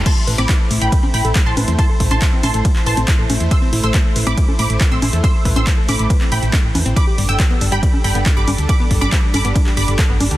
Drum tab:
CC |x---------------|----------------|----------------|----------------|
RD |x---x---x---x---|x---x---x---x---|x---x---x---x---|x---x---x---x---|
HH |x-oxx-oxx-oxx-ox|x-oxx-oxx-oxx-ox|x-oxx-oxx-oxx-ox|x-oxx-oxx-oxx-ox|
CP |----x-------x---|----x----x--x---|----x-------x---|----x----x--x---|
CG |---------o----o-|---o--o-------o-|---------o----o-|---o--o-------o-|
BD |o---o---o---o---|o-o-o---o---o---|o---o---o---o---|o-o-o---o---o---|

CC |----------------|----------------|
RD |x---x---x---x---|x---x---x---x---|
HH |x-oxx-oxx-oxx-ox|x-oxx-oxx-oxx-ox|
CP |----x-------x---|----x----x--x---|
CG |---------o----o-|---o--o-------o-|
BD |o---o---o---o---|o-o-o---o---o---|